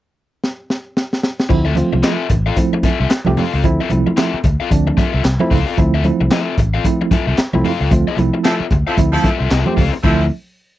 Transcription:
0.44 snare
0.70 snare
0.97 snare
1.13 snare
1.23 snare
1.40 snare
1.49 D2 F3 A3 C4 E4, muted overdriven electric guitar stroke, kick, crash, muted conga
1.65 C4 F4 A4 E5, muted conga
1.75 F3 A3 C4 F4, muted overdriven electric guitar stroke, closed hi-hat, high conga
1.92 C2, muted overdriven electric guitar stroke, high conga
2.03 C4 F4 A4 E5, snare, clap, closed hi-hat
2.29 A1, muted overdriven electric guitar stroke, kick, closed hi-hat, low conga
2.46 C4 F4 A4 F5
2.56 F3 A3 C4 E4, muted overdriven electric guitar stroke, kick, closed hi-hat, muted conga
2.73 muted overdriven electric guitar stroke, muted conga
2.83 C4 F4 A4 E5, muted fingered electric bass stroke, kick, closed hi-hat, high conga
3.00 C2 C4 F4 A4 E5
3.10 muted overdriven electric guitar stroke, snare, clap, closed hi-hat, muted conga
3.25 C2 F3 A3 C4 G4, muted overdriven electric guitar stroke, high conga
3.37 C4 F4 A4 F5, open hi-hat, low conga
3.54 C#2 C4 F4 A4 F5
3.64 D2 F3 A3 C4 E4, muted overdriven electric guitar stroke, kick, closed hi-hat
3.81 C4 F4 A4 E5, muted conga
3.90 C2 F3 A3 C4 E4, muted overdriven electric guitar stroke, closed hi-hat, high conga
4.07 muted overdriven electric guitar stroke, high conga
4.17 C4 F4 A4 E5, snare, clap, closed hi-hat, muted conga
4.33 muted fingered electric bass stroke, muted conga
4.44 D2, muted overdriven electric guitar stroke, kick, closed hi-hat, low conga
4.60 C4 F4 A4 F5
4.70 D2 F3 A3 C4 D4, muted overdriven electric guitar stroke, kick, closed hi-hat
4.87 muted overdriven electric guitar stroke, muted conga
4.97 C4 F4 A4 E5, kick, closed hi-hat, high conga
5.13 C2 C4 F4 A4 E5
5.24 C2, muted overdriven electric guitar stroke, snare, clap, closed hi-hat, muted conga
5.39 F3 A3 C4 E4, muted overdriven electric guitar stroke, muted conga, high conga
5.51 C#2 C4 F4 A4 F5, kick, open hi-hat, low conga
5.66 C4 F4 A4 F5
5.77 D2 F3 A3 C4 E4, muted overdriven electric guitar stroke, kick, closed hi-hat
5.94 C4 F4 A4 E5, muted conga
6.04 F3 A3 C4 E4, muted overdriven electric guitar stroke, closed hi-hat, high conga
6.21 C2, muted overdriven electric guitar stroke, high conga
6.30 C4 F4 A4 E5, snare, clap, closed hi-hat
6.58 A1, muted overdriven electric guitar stroke, kick, closed hi-hat, low conga
6.74 C4 F4 A4 F5
6.84 F3 A3 C4 E4, muted overdriven electric guitar stroke, kick, closed hi-hat, muted conga
7.01 muted overdriven electric guitar stroke, muted conga
7.11 C4 F4 A4 E5, muted fingered electric bass stroke, kick, closed hi-hat, high conga
7.27 C2 C4 F4 A4 E5
7.38 muted overdriven electric guitar stroke, snare, clap, closed hi-hat, muted conga
7.53 C2 F3 A3 C4 E4, muted overdriven electric guitar stroke, high conga
7.65 C4 F4 A4 F5, open hi-hat, low conga
7.81 C#2 C4 F4 A4 F5
7.91 D2 F3 A3 C4 F4, muted overdriven electric guitar stroke, kick, closed hi-hat, muted conga
8.08 C4 F4 A4 E5, muted conga
8.17 C2 F3 A3 C4 E4, muted overdriven electric guitar stroke, closed hi-hat, high conga
8.34 muted overdriven electric guitar stroke
8.44 F3 C4 E4 F4 A4 E5, snare, clap, closed hi-hat
8.60 muted fingered electric bass stroke, muted conga
8.71 D2, muted overdriven electric guitar stroke, kick, closed hi-hat, low conga
8.86 F3 C4 E4 F4 A4 F5
8.97 D2 F3 A3 C4 E4, muted overdriven electric guitar stroke, kick, closed hi-hat, muted conga
9.12 F3 E4 A4, muted overdriven electric guitar stroke
9.24 C4 F4 A4 E5, kick, closed hi-hat, high conga
9.39 C2 C4 F4 A4 E5
9.50 C2 C4 F4 A4 E5, snare, clap, closed hi-hat
9.66 F3 A3 C4 G4, muted overdriven electric guitar stroke, muted conga, high conga
9.76 C#2 C4 F4 A4 F5, kick, open hi-hat, low conga
9.93 muted overdriven electric guitar stroke
10.03 D2 F3 A3 C4 E4 F4 A4 E5, kick, crash, high conga

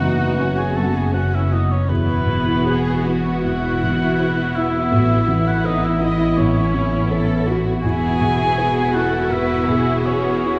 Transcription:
Already playing: F#1 F#2 E3 F#3 B3 F#4 B4 F#5
0.00 E3 D#4
0.37 F#2 C#4
0.57 G#4 G#5
0.75 F#3 B3 A4 A5
0.94 G#4 G#5
1.13 C#4 F#4 B4 F#5
1.33 E4 E5
1.52 B3 D#4 E4 D#5
1.70 C#4 C#5
1.89 E1 E2 B3 E4 F#4 B4
2.27 B2
2.66 F#4 G#4 B4
3.05 E4 F#4
3.44 E2 E4 F#4 F#5
3.84 B2
4.19 F#4 B4
4.56 E4 E5
4.91 A1 A2 E4 F#4
5.28 E3 E4
5.47 F#4 F#5
5.64 D#4 A4 B4 D#5
5.84 E4 E5
6.01 E4 D#5
6.38 A2 C#4 C#5
6.74 E3
7.11 A4 B4
7.48 E4 F#4
7.82 E1 E2 B3 E4 F#4 G#4 G#5
8.21 B2
8.58 F#4 G#4 B4
8.94 E4 F#4 A4 F#5
9.31 E2 E4 B4 E5
9.68 B2 G#4
10.05 C#4 F#4 B4 C#5
10.44 E4

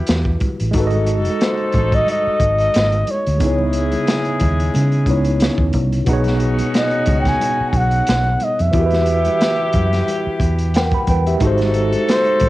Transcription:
Already playing: E3 B3 E4 F#4 G4 B4
0.07 E2, snare, closed hi-hat, muted conga
0.25 kick
0.40 kick, closed hi-hat, high conga
0.60 A1, closed hi-hat
0.71 G#1 G#3 D#4 F#4 A4, kick, closed hi-hat, low conga
0.76 F#4 A4
0.80 B4
0.87 D#5, closed hi-hat
0.92 high conga
1.06 closed hi-hat, muted conga
1.25 closed hi-hat, high conga
1.41 C5, snare, closed hi-hat, muted conga
1.57 closed hi-hat
1.72 A1, kick, closed hi-hat, muted conga, high conga, low conga
1.92 D#5, kick, closed hi-hat
2.07 D#5, closed hi-hat, muted conga, high conga
2.27 muted fingered electric bass stroke
2.40 G#1, kick, closed hi-hat, muted conga
2.58 closed hi-hat
2.74 G#1, snare, closed hi-hat, muted conga
2.92 closed hi-hat
3.07 C#5, closed hi-hat, high conga
3.26 D2, closed hi-hat
3.38 C#2 C#3 G#3 B3 E4 G#4, kick, closed hi-hat, low conga
3.42 D#4 E4
3.46 C#5
3.58 high conga
3.73 closed hi-hat, muted conga
3.92 closed hi-hat, high conga
4.07 snare, closed hi-hat, muted conga
4.25 closed hi-hat
4.39 D#2, kick, closed hi-hat, high conga, low conga
4.60 closed hi-hat
4.74 C#3, closed hi-hat, muted conga, high conga
4.92 closed hi-hat
5.06 C#2 B3 C#4 D#4 E4, kick, closed hi-hat
5.11 C#5
5.25 closed hi-hat
5.40 snare, closed hi-hat
5.58 D#2, kick
5.73 C2, kick, closed hi-hat, muted conga, high conga
5.93 closed hi-hat
6.05 B1 B2 B3 C#4 D#4 F#4, kick, closed hi-hat, muted conga, low conga
6.09 D#4 G#4
6.13 C#5
6.24 snare, closed hi-hat, high conga
6.40 closed hi-hat, muted conga
6.58 closed hi-hat, high conga
6.74 D#5, snare, closed hi-hat
6.91 closed hi-hat
7.06 C#2, kick, closed hi-hat, muted conga, high conga, low conga
7.20 G5
7.25 G#5, kick, snare, closed hi-hat
7.40 closed hi-hat, high conga
7.61 muted fingered electric bass stroke
7.70 B1 G#5, kick, closed hi-hat
7.77 F#5
7.91 closed hi-hat
8.07 B1, snare, closed hi-hat, muted conga
8.40 D#5, closed hi-hat, high conga
8.59 F2 E5, closed hi-hat
8.71 E2 E3 B3 E4 G4, kick, closed hi-hat, low conga
8.75 F#4 G4
8.80 A#4
8.86 B4
8.91 snare, closed hi-hat, high conga
9.06 closed hi-hat, muted conga
9.25 closed hi-hat, high conga
9.41 snare, closed hi-hat, muted conga
9.73 F#2, kick, closed hi-hat, muted conga, high conga, low conga
9.93 snare, closed hi-hat
10.07 closed hi-hat, high conga
10.27 muted fingered electric bass stroke
10.40 E2, kick, closed hi-hat, muted conga
10.59 closed hi-hat
10.74 A#4 F#5 G5, snare, closed hi-hat, muted conga
10.92 B5, kick, closed hi-hat
11.07 E2 B4 G5, kick, closed hi-hat, muted conga, high conga
11.27 G4 E5, closed hi-hat
11.38 G#1 G#3 D#4 F#4 A4, kick, closed hi-hat, low conga
11.44 A4 C5
11.57 snare, closed hi-hat, high conga
11.74 closed hi-hat, muted conga
11.92 closed hi-hat, high conga
12.07 C5, snare, closed hi-hat, muted conga
12.25 closed hi-hat
12.39 A1, kick, closed hi-hat, muted conga, high conga, low conga

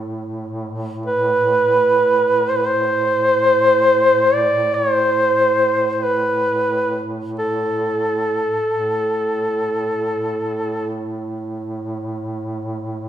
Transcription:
Already playing: A2
1.06 B4
2.50 C5
2.57 B4
2.67 C5
4.33 D5
4.74 C#5
4.92 C5
5.93 C5
6.04 B4
7.38 A4
8.69 A2

